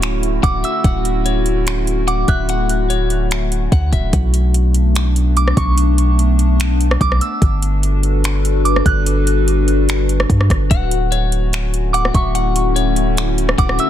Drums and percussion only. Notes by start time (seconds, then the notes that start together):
0.02 finger snap, closed hi-hat
0.23 closed hi-hat
0.43 kick, closed hi-hat
0.64 closed hi-hat
0.84 kick, closed hi-hat
1.05 closed hi-hat
1.26 closed hi-hat
1.46 closed hi-hat
1.67 finger snap, closed hi-hat
1.87 closed hi-hat
2.08 closed hi-hat
2.28 kick, closed hi-hat
2.49 closed hi-hat
2.69 closed hi-hat
2.90 closed hi-hat
3.10 closed hi-hat
3.31 finger snap, closed hi-hat
3.52 closed hi-hat
3.72 kick, closed hi-hat
3.93 kick, closed hi-hat
4.13 kick, closed hi-hat
4.34 closed hi-hat
4.54 closed hi-hat
4.74 closed hi-hat
4.95 finger snap, closed hi-hat
5.16 closed hi-hat
5.37 closed hi-hat
5.48 cross-stick
5.57 kick, closed hi-hat
5.78 closed hi-hat
5.98 closed hi-hat
6.19 closed hi-hat
6.39 closed hi-hat
6.60 finger snap, closed hi-hat
6.81 closed hi-hat
6.91 cross-stick
7.01 kick, closed hi-hat
7.12 cross-stick
7.21 closed hi-hat
7.42 kick, closed hi-hat
7.62 closed hi-hat
7.83 closed hi-hat
8.03 closed hi-hat
8.24 finger snap, closed hi-hat
8.45 closed hi-hat
8.65 closed hi-hat
8.76 cross-stick
8.86 kick, closed hi-hat
9.06 closed hi-hat
9.27 closed hi-hat
9.48 closed hi-hat
9.68 closed hi-hat
9.89 finger snap, closed hi-hat
10.09 closed hi-hat
10.20 cross-stick
10.30 kick, closed hi-hat
10.41 cross-stick
10.50 kick, cross-stick, closed hi-hat
10.71 kick, closed hi-hat
10.91 closed hi-hat
11.12 closed hi-hat
11.32 closed hi-hat
11.53 finger snap, closed hi-hat
11.74 closed hi-hat
11.94 closed hi-hat
12.05 cross-stick
12.14 kick, closed hi-hat
12.35 closed hi-hat
12.56 closed hi-hat
12.76 closed hi-hat
12.96 closed hi-hat
13.17 finger snap, closed hi-hat
13.38 closed hi-hat
13.49 cross-stick
13.58 kick, closed hi-hat
13.69 cross-stick
13.79 closed hi-hat